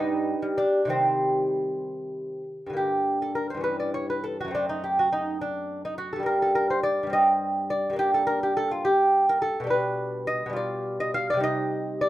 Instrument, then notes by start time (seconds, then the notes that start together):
lute
Already playing: G2 B3 D#4
0.42 G3
0.58 D4
0.85 C3 D#3 G3
0.90 C4
2.67 G2 D3
2.73 A#3 G4
3.22 A4
3.35 A#4
3.50 C5
3.54 G2 E3
3.61 C#4 B4
3.80 D5
3.94 C#5
4.10 B4
4.24 A4
4.41 F#4
4.45 F#2 A3
4.51 C4 D4
4.69 D#4
4.84 G4
4.99 F#4
5.12 D#4
5.41 D4
5.85 D#4
5.98 F#4
6.13 G2 A4
6.20 G3 A#3
6.26 A#4
6.42 A4
6.55 A#4
6.70 C5
6.83 D5
7.03 G2 G3
7.10 C4 D#5
7.70 D5
7.90 G2 A#3
7.96 D4 G4
8.14 A4
8.27 A#4
8.43 G4
8.57 A4
8.71 F4
8.85 G4
9.29 A#4
9.42 A4
9.60 B2 G3
9.67 D4 B4
10.27 D#5
10.46 B2 G3
10.53 F4 D5
11.00 D#5
11.14 F5
11.30 C3 D5
11.37 G3 D#4
11.44 D#5
12.01 D5